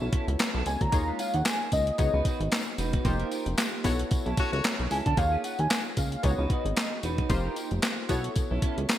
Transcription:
Already playing: analog polysynth B3 E4 F#4 A4 C#5
0.01 analog synth bass B1, clean electric guitar C#4 E4 A4
0.12 clean electric guitar C#4 E4 A4, kick, closed hi-hat
0.27 analog synth bass C#2, muted clean electric guitar stroke, closed hi-hat
0.39 muted clean electric guitar stroke, snare, clap, closed hi-hat, tambourine
0.54 analog synth bass B1, clean electric guitar C#4 E4 A4
0.66 analog synth bass C#2, soft synth lead G#5, muted clean electric guitar stroke, closed hi-hat, tambourine
0.81 analog synth bass D2, soft synth lead A#5, muted clean electric guitar stroke, kick, closed hi-hat
0.92 analog synth bass D#2, analog polysynth A#3 D#4 F4 G#4 C#5, kick, closed hi-hat, tambourine
1.07 clean electric guitar G#3 C#4 F4
1.19 clean electric guitar G#3 C#4 F4, soft synth lead F5, closed hi-hat, tambourine
1.34 analog synth bass D#2, soft synth lead F#5, muted clean electric guitar stroke, closed hi-hat
1.45 soft synth lead G#5, snare, clap, closed hi-hat, tambourine
1.60 muted clean electric guitar stroke
1.72 analog synth bass C#2, soft synth lead D#5, kick, closed hi-hat, tambourine
1.87 muted clean electric guitar stroke, closed hi-hat
1.98 analog synth bass C#2, analog polysynth B3 D#4 F#4 G#4 C#5, muted clean electric guitar stroke, kick, closed hi-hat, tambourine
2.13 analog synth bass C#2, clean electric guitar D#4 F#4 B4
2.25 clean electric guitar D#4 F#4 B4, kick, closed hi-hat, tambourine
2.40 analog synth bass G#1, muted clean electric guitar stroke, closed hi-hat
2.52 snare, clap, closed hi-hat, tambourine
2.67 muted clean electric guitar stroke
2.78 analog synth bass E1, clean electric guitar D#4 F#4 B4, closed hi-hat, tambourine
2.93 clean electric guitar D#4 F#4 B4, kick, closed hi-hat
3.05 analog synth bass F1, analog polysynth A#3 D#4 F4 G4 C5, muted clean electric guitar stroke, kick, closed hi-hat, tambourine
3.20 clean electric guitar D#4 G4 A#4, closed hi-hat
3.31 clean electric guitar D#4 G4 A#4, closed hi-hat, tambourine
3.46 analog synth bass F1, muted clean electric guitar stroke, closed hi-hat
3.58 muted clean electric guitar stroke, snare, clap, closed hi-hat, tambourine
3.73 muted clean electric guitar stroke
3.84 analog synth bass B1, analog polysynth B3 E4 F#4 A4 C#5, kick, open hi-hat, tambourine
3.99 muted clean electric guitar stroke, closed hi-hat
4.11 muted clean electric guitar stroke, kick, closed hi-hat, tambourine
4.26 analog synth bass B1, clean electric guitar C#4 E4 A4, closed hi-hat
4.37 horn section A3 F#4 C#5, clean electric guitar C#4 E4 A4, kick, closed hi-hat, tambourine
4.52 analog synth bass C#2, horn section A3 F#4 C#5, muted clean electric guitar stroke, closed hi-hat
4.64 muted clean electric guitar stroke, snare, clap, closed hi-hat, tambourine
4.79 analog synth bass B1, muted clean electric guitar stroke, closed hi-hat
4.91 analog synth bass C#2, clean electric guitar C#4 E4 A4, soft synth lead G#5, open hi-hat, tambourine
5.05 analog synth bass D2, clean electric guitar C#4 E4 A4, soft synth lead A5, kick, closed hi-hat
5.17 analog synth bass D#2, analog polysynth A#3 D#4 F4 G#4 C#5, soft synth lead F5, muted clean electric guitar stroke, kick, closed hi-hat, tambourine
5.32 clean electric guitar C#4 F4 G#4
5.43 clean electric guitar C#4 F4 G#4, soft synth lead F#5, closed hi-hat, tambourine
5.58 analog synth bass D#2, soft synth lead G#5, muted clean electric guitar stroke, closed hi-hat
5.70 soft synth lead G#5, snare, clap, closed hi-hat, tambourine
5.85 muted clean electric guitar stroke
5.97 analog synth bass C#2, soft synth lead F5, kick, closed hi-hat, tambourine
6.12 soft synth lead F5, muted clean electric guitar stroke, closed hi-hat
6.23 analog synth bass C#2, analog polysynth B3 D#4 F4 G#4 C#5, soft synth lead C#5, muted clean electric guitar stroke, kick, closed hi-hat, tambourine
6.30 analog polysynth F#4
6.38 analog synth bass C#2, clean electric guitar D#4 F#4 B4
6.50 clean electric guitar D#4 F#4 B4, soft synth lead D#5, kick, closed hi-hat
6.65 analog synth bass G#1, muted clean electric guitar stroke, closed hi-hat
6.77 snare, clap, closed hi-hat, tambourine
6.92 muted clean electric guitar stroke
7.03 analog synth bass E1, clean electric guitar D#4 F#4 B4, closed hi-hat, tambourine
7.18 clean electric guitar D#4 F#4 B4, kick, closed hi-hat
7.29 analog synth bass F1, analog polysynth A#3 D#4 F4 G4 C5, muted clean electric guitar stroke, kick, closed hi-hat, tambourine
7.44 clean electric guitar D#4 G4 A#4
7.56 clean electric guitar D#4 G4 A#4, closed hi-hat, tambourine
7.71 analog synth bass F1, muted clean electric guitar stroke, closed hi-hat
7.82 snare, clap, closed hi-hat, tambourine
7.98 muted clean electric guitar stroke
8.09 analog synth bass B1, analog polysynth B3 E4 F#4 A4 C#5, kick, closed hi-hat, tambourine
8.24 muted clean electric guitar stroke, closed hi-hat
8.36 muted clean electric guitar stroke, kick, closed hi-hat, tambourine
8.50 analog synth bass B1, clean electric guitar C#4 E4 A4
8.62 clean electric guitar C#4 E4 A4, kick, closed hi-hat
8.77 analog synth bass C#2, muted clean electric guitar stroke, closed hi-hat
8.89 muted clean electric guitar stroke, snare, clap, closed hi-hat, tambourine

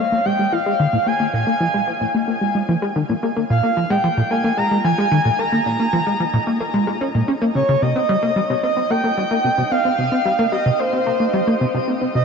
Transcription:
Already playing: ambient pad A#3 D#4 F4 C#5, synth texture D#4 D#5
0.00 soft synth lead F5
0.12 analog synth bass A#3
0.25 analog synth bass G#3, soft synth lead G5
0.39 analog synth bass G#3
0.52 analog synth bass F3, soft synth lead F5
0.66 analog synth bass G#3
0.80 analog synth bass D#3
0.93 analog synth bass A#2
1.06 analog synth bass A#3, soft synth lead G#5
1.20 analog synth bass A#3
1.33 analog synth bass A#2, soft synth lead G#5
1.47 analog synth bass A#3
1.60 analog synth bass F3
1.74 analog synth bass G#3
1.87 analog synth bass F3
2.01 analog synth bass A#2
2.14 analog synth bass A#3
2.28 analog synth bass A#3
2.41 analog synth bass G#3
2.55 analog synth bass G#3
2.69 analog synth bass F3
2.82 analog synth bass G#3
2.96 analog synth bass D#3
3.09 analog synth bass A#2
3.22 analog synth bass A#3, ambient pad D#5
3.36 analog synth bass A#3
3.50 analog synth bass A#2, soft synth lead F5
3.63 analog synth bass A#3
3.77 analog synth bass F3
3.90 analog synth bass G#3, soft synth lead G5
4.04 analog synth bass F3
4.17 analog synth bass A#2
4.31 analog synth bass A#3, soft synth lead G#5
4.44 analog synth bass A#3
4.57 analog synth bass G#3, soft synth lead A#5
4.71 analog synth bass G#3
4.84 analog synth bass F3, soft synth lead G#5
4.98 analog synth bass G#3
5.11 analog synth bass D#3
5.25 analog synth bass A#2
5.39 analog synth bass A#3, soft synth lead A#5
5.52 analog synth bass A#3
5.66 analog synth bass A#2, soft synth lead A#5
5.80 analog synth bass A#3
5.93 analog synth bass F3
6.07 analog synth bass G#3
6.20 analog synth bass F3
6.33 analog synth bass A#2
6.47 analog synth bass A#3
6.60 analog synth bass A#3
6.74 analog synth bass G#3
6.87 analog synth bass G#3
7.01 analog synth bass C#4
7.15 analog synth bass A#2
7.28 analog synth bass C#4
7.42 analog synth bass A#3
7.55 analog synth bass C#3, soft synth lead C#5
7.69 analog synth bass C#3
7.82 analog synth bass C3, ambient pad C4, soft synth lead D#5
7.96 analog synth bass C4
8.09 analog synth bass G3
8.14 ambient pad G4
8.23 analog synth bass A#3
8.36 analog synth bass G3
8.50 analog synth bass C3
8.63 analog synth bass C4, soft synth lead D#5
8.77 analog synth bass C4
8.90 analog synth bass A#3, soft synth lead G5
9.04 analog synth bass A#3
9.17 analog synth bass G3
9.31 analog synth bass A#3
9.44 analog synth bass C3
9.58 analog synth bass C3
9.71 analog synth bass C4, soft synth lead F5
9.85 analog synth bass C4
9.98 analog synth bass C3
10.12 analog synth bass C4
10.25 analog synth bass G3
10.39 analog synth bass A#3
10.52 analog synth bass G3, soft synth lead D#5
10.66 analog synth bass C3
10.79 analog synth bass C4, soft synth lead C5
10.93 analog synth bass C4
11.06 analog synth bass A#3
11.20 analog synth bass A#3
11.34 analog synth bass G3
11.47 analog synth bass A#3
11.61 analog synth bass C3
11.74 analog synth bass C3
11.88 analog synth bass C4
12.01 analog synth bass C4
12.15 analog synth bass C3, soft synth lead D#5

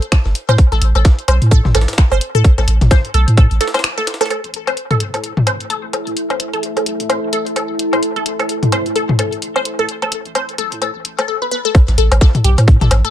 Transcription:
0.02 closed hi-hat
0.12 synth arpeggio sound A4, finger snap, kick, snare, closed hi-hat, low woodblock
0.25 sub bass G1, snare
0.35 closed hi-hat
0.49 sub bass A2, synth arpeggio sound C5, closed hi-hat, low woodblock
0.58 kick, closed hi-hat
0.72 sub bass A1, synth arpeggio sound A4, snare, closed hi-hat
0.82 sub bass A1, closed hi-hat
0.95 sub bass A1, synth arpeggio sound A4, closed hi-hat, low woodblock
1.05 kick, snare, closed hi-hat
1.19 closed hi-hat
1.28 sub bass B1, synth arpeggio sound C5, closed hi-hat, low woodblock
1.42 sub bass A2, closed hi-hat
1.51 synth arpeggio sound A4, kick, closed hi-hat
1.65 sub bass A1, snare, mid tom
1.75 sub bass A1, synth arpeggio sound A4, snare, closed hi-hat, low woodblock
1.81 snare, closed hi-hat
1.88 snare, closed hi-hat
1.93 snare, closed hi-hat
1.98 finger snap, kick, snare, closed hi-hat
2.11 sub bass G1, synth arpeggio sound C5, closed hi-hat, low woodblock
2.21 closed hi-hat
2.35 sub bass A2, synth arpeggio sound A4, closed hi-hat
2.44 kick, closed hi-hat
2.58 sub bass A1, synth arpeggio sound A4, snare, closed hi-hat, low woodblock
2.68 sub bass A1, closed hi-hat
2.81 sub bass A1, snare, closed hi-hat, mid tom
2.91 synth arpeggio sound C5, kick, snare, closed hi-hat, low woodblock
3.05 closed hi-hat
3.14 sub bass B1, synth arpeggio sound A4, closed hi-hat
3.28 sub bass A2, closed hi-hat
3.37 synth arpeggio sound A4, kick, closed hi-hat, low woodblock
3.51 sub bass A1, closed hi-hat
3.61 synth arpeggio sound A4, snare, closed hi-hat
3.68 snare, closed hi-hat
3.74 synth arpeggio sound C5, snare, closed hi-hat, low woodblock
3.79 snare, closed hi-hat
3.84 finger snap, snare, closed hi-hat
3.98 synth arpeggio sound A4, snare, closed hi-hat
4.07 snare, closed hi-hat
4.14 snare, closed hi-hat
4.21 synth arpeggio sound A4, snare, closed hi-hat, low woodblock
4.26 snare, closed hi-hat
4.30 ambient pad E4, synth arpeggio sound A4, closed hi-hat, low woodblock
4.44 sub bass A1, closed hi-hat
4.49 ambient pad A4
4.54 sub bass A1, closed hi-hat
4.67 sub bass A1, synth arpeggio sound C5, closed hi-hat, low woodblock
4.77 closed hi-hat
4.89 synth arpeggio sound A4, ambient pad E5, closed hi-hat, mid tom
5.00 sub bass B1, closed hi-hat
5.14 sub bass A2, synth arpeggio sound A4, closed hi-hat, low woodblock
5.24 closed hi-hat
5.37 sub bass A1, mid tom
5.47 sub bass A1, synth arpeggio sound C5, ambient pad A5, closed hi-hat, low woodblock
5.60 closed hi-hat
5.70 synth arpeggio sound A4, closed hi-hat
5.84 sub bass G1
5.93 synth arpeggio sound A4, closed hi-hat, low woodblock
6.07 sub bass A2, closed hi-hat
6.17 closed hi-hat
6.30 sub bass A1, synth arpeggio sound C5, closed hi-hat, low woodblock
6.40 sub bass A1, closed hi-hat
6.53 sub bass A1, synth arpeggio sound A4, closed hi-hat
6.63 closed hi-hat
6.77 synth arpeggio sound A4, closed hi-hat, low woodblock
6.86 sub bass B1, closed hi-hat
7.00 sub bass A2, closed hi-hat
7.10 synth arpeggio sound C5, closed hi-hat, low woodblock
7.23 sub bass A1
7.33 sub bass A1, synth arpeggio sound A4, closed hi-hat
7.47 closed hi-hat
7.56 synth arpeggio sound A4, closed hi-hat, low woodblock
7.70 sub bass G1
7.79 closed hi-hat
7.93 sub bass A2, synth arpeggio sound C5, closed hi-hat, low woodblock
8.03 closed hi-hat
8.16 sub bass A1, synth arpeggio sound A4, closed hi-hat
8.26 sub bass A1, closed hi-hat
8.39 sub bass A1, synth arpeggio sound A4, closed hi-hat, low woodblock
8.49 closed hi-hat
8.63 closed hi-hat, mid tom
8.72 sub bass B1, synth arpeggio sound C5, closed hi-hat, low woodblock
8.86 sub bass A2, closed hi-hat
8.96 synth arpeggio sound A4, closed hi-hat
9.09 sub bass A1, mid tom
9.19 sub bass A1, synth arpeggio sound A4, closed hi-hat, low woodblock
9.33 closed hi-hat
9.42 closed hi-hat
9.56 sub bass G1, synth arpeggio sound C5, low woodblock
9.65 closed hi-hat
9.79 sub bass A2, synth arpeggio sound A4, closed hi-hat
9.89 closed hi-hat
10.02 sub bass A1, synth arpeggio sound A4, closed hi-hat, low woodblock
10.12 sub bass A1, closed hi-hat
10.26 sub bass A1, closed hi-hat
10.35 synth arpeggio sound C5, closed hi-hat, low woodblock
10.49 closed hi-hat
10.58 sub bass B1, synth arpeggio sound A4, closed hi-hat
10.72 sub bass A2, closed hi-hat
10.82 synth arpeggio sound A4, closed hi-hat, low woodblock
10.95 sub bass A1
11.05 sub bass A1, closed hi-hat
11.19 synth arpeggio sound A4, closed hi-hat, low woodblock
11.28 synth arpeggio sound A4
11.42 synth arpeggio sound B4
11.51 synth arpeggio sound B4
11.65 synth arpeggio sound A4
11.75 kick, closed hi-hat, low woodblock
11.88 sub bass A1, snare, closed hi-hat
11.98 sub bass A1, synth arpeggio sound A4, closed hi-hat
12.12 sub bass A1, closed hi-hat, low woodblock
12.21 synth arpeggio sound A4, kick, snare, closed hi-hat
12.35 closed hi-hat, mid tom
12.44 sub bass B1, synth arpeggio sound G4, closed hi-hat
12.58 sub bass A2, closed hi-hat, low woodblock
12.68 kick, closed hi-hat
12.81 sub bass A1, synth arpeggio sound A4, snare, closed hi-hat, mid tom
12.91 sub bass A1, snare, closed hi-hat, low woodblock
13.05 synth arpeggio sound A4, closed hi-hat

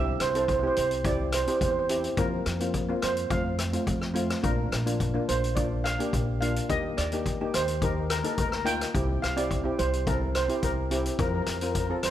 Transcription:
Already playing: upright bass C2, steel pan C4 E4 G4 E5
0.20 upright bass C2, steel pan C5, cross-stick, closed hi-hat
0.30 steel pan C5
0.35 steel pan C4 E4 A4 C5, closed hi-hat
0.44 steel pan C5
0.48 kick, closed hi-hat
0.53 steel pan C5
0.59 steel pan C4 E4 C5
0.63 steel pan G4 C5
0.76 upright bass C2, steel pan C5, closed hi-hat
0.91 closed hi-hat
1.04 steel pan C4 E4 G4 D5, kick, closed hi-hat
1.32 steel pan C5, cross-stick, closed hi-hat
1.42 steel pan C5
1.47 steel pan C4 E4 G4 C5, closed hi-hat
1.57 steel pan C5
1.61 upright bass E2, steel pan C5, kick, closed hi-hat
1.71 steel pan C5
1.79 steel pan C5
1.89 steel pan C4 E4 G4, closed hi-hat
2.04 closed hi-hat
2.17 upright bass F2, steel pan A#3 C4 F4 A#4, kick, closed hi-hat
2.46 upright bass F2, cross-stick, closed hi-hat
2.60 steel pan A#3 C4 F4, closed hi-hat
2.74 kick, closed hi-hat
2.88 steel pan A#3 C4 F4
3.02 upright bass F2, steel pan C5, cross-stick, closed hi-hat
3.17 closed hi-hat
3.30 upright bass F2, steel pan A3 C4 F4 F5, kick, closed hi-hat
3.59 cross-stick, closed hi-hat
3.73 steel pan A3 C4 F4, closed hi-hat
3.87 upright bass F2, kick, closed hi-hat
4.01 cross-stick
4.14 steel pan A3 C4 F4, closed hi-hat
4.30 cross-stick, closed hi-hat
4.43 upright bass A#1, steel pan A#3 D4 F4 A#4, kick, closed hi-hat
4.72 upright bass A#1, cross-stick, closed hi-hat
4.86 steel pan A#3 D4 F4, closed hi-hat
5.00 kick, closed hi-hat
5.14 steel pan A#3 D4 F4
5.29 upright bass A#1, steel pan C5, closed hi-hat
5.44 closed hi-hat
5.55 steel pan A#3 D4 F4 D5, kick, closed hi-hat
5.84 steel pan F5, cross-stick, closed hi-hat
5.99 steel pan A#3 D4 G4, closed hi-hat
6.13 upright bass A#1, kick, closed hi-hat
6.41 steel pan A#3 D4 F4 F5, closed hi-hat
6.56 closed hi-hat
6.69 upright bass D#2, steel pan A#3 D#4 G4 D#5, kick, closed hi-hat
6.97 upright bass D#2, steel pan D5, cross-stick, closed hi-hat
7.12 steel pan A#3 D#4 G4, closed hi-hat
7.26 kick, closed hi-hat
7.41 steel pan A#3 D#4 G4
7.54 upright bass D#2, steel pan C5, cross-stick, closed hi-hat
7.68 closed hi-hat
7.82 steel pan A#3 D#4 G4 A#4, kick, closed hi-hat
8.10 steel pan A#4, cross-stick, closed hi-hat
8.19 steel pan A#4
8.24 steel pan A#3 D#4 A4 A#4, closed hi-hat
8.33 steel pan A#4
8.38 upright bass D2, steel pan A#4, kick, closed hi-hat
8.49 steel pan A#4, cross-stick
8.56 steel pan A#4
8.65 steel pan A#3 D#4 F4 G5, closed hi-hat
8.81 cross-stick, closed hi-hat
8.94 upright bass C2, steel pan C4 E4 G4, kick, closed hi-hat
9.22 upright bass C2, steel pan F5, cross-stick, closed hi-hat
9.36 steel pan C4 E4 G4 D5, closed hi-hat
9.51 kick, closed hi-hat
9.64 steel pan C4 E4 G4
9.79 upright bass C2, steel pan C5, closed hi-hat
9.93 closed hi-hat
10.07 steel pan C4 E4 A4 A#4, kick, closed hi-hat
10.35 steel pan C5, cross-stick, closed hi-hat
10.48 steel pan C4 E4 G4, closed hi-hat
10.63 upright bass C2, steel pan A#4, kick, closed hi-hat
10.91 steel pan C4 E4 G4, closed hi-hat
11.06 closed hi-hat
11.19 upright bass F2, steel pan C4 F4 A#4, kick, closed hi-hat
11.28 steel pan A#4
11.34 steel pan A#4
11.42 steel pan A#4
11.46 upright bass F2, steel pan A#4, cross-stick, closed hi-hat
11.57 steel pan A#4
11.61 steel pan C4 F4 A#4, closed hi-hat
11.72 steel pan A#4, kick, closed hi-hat
11.80 steel pan A#4
11.87 steel pan C4 F4 A4 A#4
12.03 upright bass F2, steel pan C5, cross-stick, closed hi-hat

